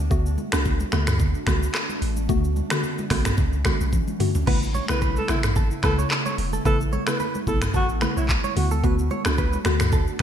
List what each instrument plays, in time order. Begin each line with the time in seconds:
Already playing: sub bass D2, ambient pad A3 B3 D4 F#4
0.11 synth pluck D3 A3 B3 F#4, kick, shaker
0.26 shaker
0.38 high conga, shaker
0.52 sub bass C#2, synth pluck A3 B3 D4 F#4, finger snap, cross-stick, shaker
0.65 kick, low conga, shaker
0.80 high conga, shaker
0.92 sub bass D2, synth pluck D3 A3 B3 F#4, finger snap, cross-stick, low conga, shaker
1.07 finger snap, cross-stick, mid tom, shaker
1.19 kick, low conga, shaker
1.35 shaker
1.47 sub bass C#2, synth pluck D3 A3 B3 F#4, finger snap, kick, cross-stick, high conga, shaker
1.63 shaker
1.74 finger snap, cross-stick, clap, shaker
1.89 high conga, shaker
2.02 sub bass A1, ambient pad C#4, open hi-hat, shaker
2.17 high conga, shaker
2.29 sub bass D2, synth pluck D3 A3 B3 F#4, kick, low conga, shaker
2.44 shaker
2.56 high conga, shaker
2.70 synth pluck D3 A3 B3 F#4, finger snap, cross-stick, shaker
2.83 low conga, shaker
2.98 high conga, shaker
3.10 sub bass B1, synth pluck D3 A3 B3 F#4, finger snap, kick, cross-stick, open hi-hat, low conga, shaker
3.25 finger snap, cross-stick, mid tom, shaker
3.37 sub bass C#2, kick, low conga, shaker
3.53 shaker
3.65 synth pluck D3 A3 B3 F#4, finger snap, kick, cross-stick, high conga, shaker
3.81 sub bass B1, shaker
3.93 kick, high tom, shaker
4.08 high conga, shaker
4.20 synth pluck D3 A3 B3 F#4, mid tom, open hi-hat, shaker
4.35 floor tom, high conga, shaker
4.47 sub bass A1, synth pluck C#3 A3 B3 E4, ambient pad C#3 B3 E4, clean electric guitar B4, kick, crash
4.62 shaker
4.74 clean electric guitar C#5, high conga, shaker
4.88 sub bass B1, synth pluck C#3 A3 B3 E4, alto saxophone B4, finger snap, cross-stick, shaker
5.01 clean electric guitar B4, kick, low conga, shaker
5.16 alto saxophone A4, high conga, shaker
5.28 sub bass A1, synth pluck C#3 A3 B3 E4, alto saxophone E4, finger snap, cross-stick, low conga, shaker
5.43 finger snap, cross-stick, mid tom, shaker
5.56 clean electric guitar A4, kick, low conga, shaker
5.71 shaker
5.83 sub bass C#2, synth pluck C#3 A3 B3 E4, alto saxophone A4, clean electric guitar B4, finger snap, kick, cross-stick, high conga, shaker
5.98 clean electric guitar C#5, shaker
6.10 finger snap, cross-stick, clap, shaker
6.26 clean electric guitar C#5, high conga, shaker
6.38 sub bass E1, open hi-hat, shaker
6.53 clean electric guitar A4, high conga, shaker
6.65 sub bass A1, synth pluck C#3 A3 B3 E4, alto saxophone A4, clean electric guitar B4, kick, shaker
6.81 shaker
6.93 clean electric guitar C#5, high conga, shaker
7.07 synth pluck C#3 A3 B3 E4, alto saxophone B4, finger snap, cross-stick, shaker
7.20 clean electric guitar B4, low conga, shaker
7.34 high conga, shaker
7.47 sub bass B1, synth pluck C#3 A3 B3 E4, alto saxophone A4, kick, low conga, shaker
7.62 finger snap, cross-stick, mid tom, shaker
7.74 sub bass A1, alto saxophone F#4, clean electric guitar A4, kick, low conga, shaker
7.89 shaker
8.01 synth pluck C#3 A3 B3 E4, clean electric guitar B4, finger snap, cross-stick, high conga, shaker
8.17 sub bass B1, alto saxophone E4, clean electric guitar C#5, shaker
8.29 kick, clap, shaker
8.44 clean electric guitar C#5, high conga, shaker
8.56 sub bass D2, synth pluck D3 A3 B3 F#4, ambient pad D4 F#4, alto saxophone F#4, open hi-hat, shaker
8.71 clean electric guitar A4, high conga, shaker
8.83 synth pluck D3 A3 B3 F#4, clean electric guitar B4, kick, shaker
8.99 shaker
9.11 clean electric guitar C#5, high conga, shaker
9.25 sub bass C#2, synth pluck A3 B3 D4 F#4, finger snap, cross-stick, shaker
9.38 clean electric guitar B4, kick, low conga, shaker
9.53 high conga, shaker
9.65 sub bass D2, synth pluck D3 A3 B3 F#4, finger snap, cross-stick, low conga, shaker
9.80 finger snap, cross-stick, mid tom, shaker
9.92 clean electric guitar A4, kick, low conga, shaker
10.07 shaker